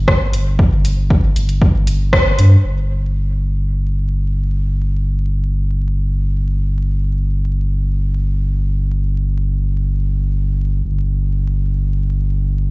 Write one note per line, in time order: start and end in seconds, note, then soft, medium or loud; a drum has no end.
0.00 1.30 G1 medium
0.08 kick loud
0.08 cross-stick loud
0.33 closed hi-hat medium
0.59 kick loud
0.85 closed hi-hat medium
1.10 kick loud
1.36 2.32 G1 medium
1.36 closed hi-hat medium
1.49 closed hi-hat soft
1.62 kick loud
1.87 closed hi-hat medium
2.13 kick loud
2.13 cross-stick loud
2.39 2.56 G2 medium
2.39 closed hi-hat medium
2.64 10.82 G1 medium
10.85 12.71 G1 medium